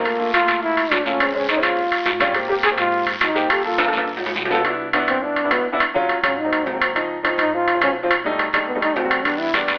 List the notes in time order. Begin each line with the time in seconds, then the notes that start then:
Already playing: G1 A#3
0.04 A3 A#3 F4, high timbale, long guiro
0.18 A3 A#3 F4
0.34 F4, high timbale, low timbale, short guiro
0.40 A3 A#3 F4
0.48 D2, high timbale, short guiro
0.63 E4, long guiro
0.77 high timbale
0.91 A#1 D4, high timbale, low timbale, short guiro
1.05 A3 A#3 C#4 F4, short guiro
1.19 G#3 C4 C#4, high timbale, long guiro
1.34 G#3 C4 C#4
1.49 D#4, high timbale, low timbale, short guiro
1.55 G#3 C4 C#4
1.62 D#2 F4, high timbale, short guiro
1.77 long guiro
1.92 high timbale
2.06 G#1, high timbale, low timbale, short guiro
2.20 G3 C#4 F4, high timbale, short guiro
2.34 A#3 C4 G4, high timbale, long guiro
2.48 A#3 C4 G4
2.63 G#4, high timbale, low timbale, short guiro
2.70 A#3 C4 G4
2.78 G#2 F4, high timbale, short guiro
2.92 long guiro
3.07 high timbale
3.21 G2 D#4, high timbale, low timbale, short guiro
3.35 A#3 C4 G4, short guiro
3.49 A#3 F4 G4 A4, high timbale, long guiro
3.64 A#3 F4 A4
3.78 high timbale, short guiro
3.86 A#3 F4 A4, high timbale
3.93 G2, short guiro
3.98 high timbale
4.08 long guiro
4.17 low timbale
4.26 low timbale
4.36 C2, low timbale, short guiro
4.45 low timbale
4.50 B3 F4 A4, short guiro
4.55 low timbale
4.65 B3 D4 E4, high timbale
4.93 B3 D4 E4, high timbale, low timbale
5.07 G2 C4, high timbale
5.22 B3 D4 E4
5.36 high timbale
5.44 B3 D4 E4
5.51 D#2 B3, high timbale, low timbale
5.72 B3 D4 E4
5.80 high timbale
5.94 F#3 C#4 F4
6.09 high timbale, low timbale
6.22 G#1 F#3 C#4 F4, high timbale
6.38 D#4
6.44 F#3 A#3 C4
6.53 high timbale
6.66 C#2 C4, low timbale
6.73 F#3 A#3 C4
6.82 high timbale
6.95 F3 C4 D#4, high timbale
7.23 F3 C4 D#4, high timbale, low timbale
7.38 G#1 D#4, high timbale
7.53 F3 C4 D#4 F4
7.68 high timbale
7.74 F3 C4 F4
7.81 B1 C#4, high timbale, low timbale
8.03 F3 C4 F4
8.11 high timbale
8.24 G3 A3 D#4
8.39 high timbale, low timbale
8.53 D#2 G3 A3 D#4, high timbale
8.68 B3
8.75 G3 A3 D#4
8.82 D#4, high timbale
8.96 E2 C4, low timbale
9.03 G3 A3 F#4
9.11 high timbale
9.25 G3 B3 D4, high timbale, long guiro
9.40 E4
9.54 G3 B3 D4, high timbale, low timbale, short guiro
9.68 E2, high timbale, short guiro